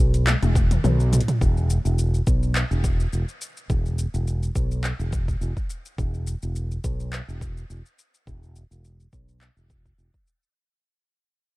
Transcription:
0.00 0.34 B1 medium
0.14 closed hi-hat medium
0.14 shaker soft
0.27 clap medium
0.27 closed hi-hat medium
0.27 high tom medium
0.27 shaker soft
0.42 0.77 E1 medium
0.42 closed hi-hat soft
0.42 high tom medium
0.42 shaker soft
0.55 kick medium
0.55 high tom medium
0.55 shaker medium
0.71 closed hi-hat medium
0.71 mid tom medium
0.71 shaker soft
0.84 1.19 B1 medium
0.84 mid tom medium
0.84 shaker soft
1.00 shaker soft
1.13 closed hi-hat soft
1.13 mid tom loud
1.13 shaker medium
1.21 closed hi-hat medium
1.28 closed hi-hat soft
1.28 mid tom medium
1.28 shaker soft
1.41 1.77 E1 medium
1.41 kick loud
1.41 shaker soft
1.57 shaker soft
1.70 shaker medium
1.85 2.19 E1 medium
1.85 shaker soft
1.99 shaker soft
2.14 shaker soft
2.27 2.62 B1 medium
2.27 kick loud
2.27 shaker medium
2.43 shaker soft
2.55 clap medium
2.55 shaker soft
2.71 3.05 E1 medium
2.71 shaker soft
2.84 kick medium
2.84 shaker medium
3.00 shaker soft
3.13 3.23 E1 medium
3.13 shaker soft
3.29 shaker soft
3.41 shaker medium
3.57 shaker soft
3.70 4.05 E1 medium
3.70 kick loud
3.70 shaker soft
3.86 shaker soft
3.99 shaker medium
4.14 4.48 E1 medium
4.14 shaker soft
4.27 shaker soft
4.43 shaker soft
4.56 4.91 B1 medium
4.56 kick medium
4.56 shaker medium
4.71 shaker soft
4.84 clap medium
4.84 shaker soft
4.99 5.34 E1 medium
4.99 shaker soft
5.13 kick medium
5.13 shaker medium
5.28 kick medium
5.28 shaker soft
5.41 5.51 E1 medium
5.41 shaker soft
5.57 kick medium
5.57 shaker soft
5.70 shaker medium
5.86 shaker soft
5.98 6.34 E1 medium
5.98 kick loud
5.98 shaker soft
6.14 shaker soft
6.27 shaker medium
6.43 6.77 E1 medium
6.43 shaker soft
6.56 shaker soft
6.71 shaker soft
6.84 7.20 B1 medium
6.84 kick loud
6.84 shaker medium
7.00 shaker soft
7.13 clap medium
7.13 shaker soft
7.28 7.62 E1 medium
7.28 shaker soft
7.41 kick medium
7.41 shaker medium
7.57 shaker soft
7.70 7.80 E1 medium
7.70 shaker soft
7.86 shaker soft
7.99 shaker medium
8.14 shaker soft
8.27 8.62 E1 medium
8.27 kick loud
8.27 shaker soft
8.43 shaker soft
8.56 shaker medium
8.71 9.05 E1 medium
8.71 shaker soft
8.85 shaker soft
9.00 shaker soft
9.13 9.48 B1 medium
9.13 kick medium
9.13 shaker medium
9.29 shaker soft
9.41 clap medium
9.41 shaker soft
9.57 9.91 E1 medium
9.57 shaker soft
9.70 kick medium
9.70 shaker medium
9.86 kick medium
9.86 shaker soft
9.98 10.08 E1 medium
9.98 shaker soft
10.14 kick medium
10.14 shaker soft
10.27 shaker medium
10.43 shaker soft

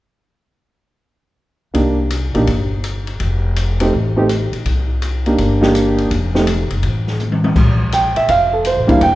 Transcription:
1.74 2.31 C2 medium
1.74 1.96 A#3 soft
1.74 1.96 D4 soft
1.74 1.96 D#4 soft
1.74 1.96 G4 soft
1.74 kick soft
1.74 ride soft
2.10 hi-hat pedal medium
2.10 ride medium
2.34 2.46 A#1 medium
2.34 2.46 A#3 medium
2.34 2.46 D4 soft
2.34 2.46 D#4 soft
2.34 2.46 G4 medium
2.34 ride soft
2.47 3.16 G1 medium
2.47 kick soft
2.47 ride soft
2.84 hi-hat pedal soft
2.84 ride soft
3.07 ride soft
3.20 3.89 F1 medium
3.20 kick soft
3.20 ride soft
3.56 hi-hat pedal soft
3.56 ride medium
3.80 3.91 A3 medium
3.80 3.91 C4 medium
3.80 3.92 D#4 medium
3.80 3.92 G4 medium
3.80 ride medium
3.93 4.49 A1 medium
3.93 kick soft
4.16 4.28 A3 medium
4.16 4.28 C4 medium
4.16 4.28 D#4 medium
4.16 4.28 G4 medium
4.29 hi-hat pedal soft
4.29 ride medium
4.52 4.64 A#1 medium
4.52 ride soft
4.66 5.34 C2 medium
4.66 kick soft
4.66 ride soft
5.02 hi-hat pedal soft
5.02 ride medium
5.26 5.60 A#3 medium
5.26 5.60 D4 soft
5.26 5.60 D#4 soft
5.26 5.60 G4 medium
5.26 ride soft
5.38 6.07 G1 medium
5.38 kick soft
5.38 ride soft
5.61 6.08 A#3 medium
5.61 6.08 D4 medium
5.61 6.08 D#4 medium
5.61 6.08 G4 medium
5.61 snare soft
5.75 hi-hat pedal medium
5.75 ride soft
5.98 ride soft
6.11 6.67 F1 medium
6.11 kick soft
6.11 ride soft
6.35 6.46 A3 medium
6.35 6.46 C4 medium
6.35 6.46 D#4 medium
6.35 6.46 G4 medium
6.35 snare soft
6.47 hi-hat pedal medium
6.47 ride medium
6.70 6.82 F#1 medium
6.70 ride soft
6.83 7.52 A1 medium
6.83 kick soft
6.83 ride soft
7.07 snare soft
7.19 hi-hat pedal medium
7.19 mid tom soft
7.32 high tom soft
7.44 high tom medium
7.56 8.12 A#1 medium
7.56 kick medium
7.56 crash medium
7.92 8.16 G5 medium
7.92 hi-hat pedal medium
7.92 ride medium
8.16 8.28 E5 medium
8.16 muted upright bass stroke soft
8.16 ride soft
8.28 8.73 F1 medium
8.28 8.52 F5 medium
8.28 kick soft
8.28 ride medium
8.53 8.65 A4 medium
8.65 8.89 C5 medium
8.65 hi-hat pedal medium
8.65 ride medium
8.76 8.88 A1 medium
8.87 9.00 F1 medium
8.87 8.99 G3 medium
8.87 9.00 A#3 medium
8.87 8.99 D4 medium
8.87 9.00 E4 medium
8.87 9.02 F5 medium
8.87 kick soft
8.87 ride soft
9.01 9.15 E1 medium
9.01 9.15 G5 medium
9.01 kick soft
9.01 ride medium

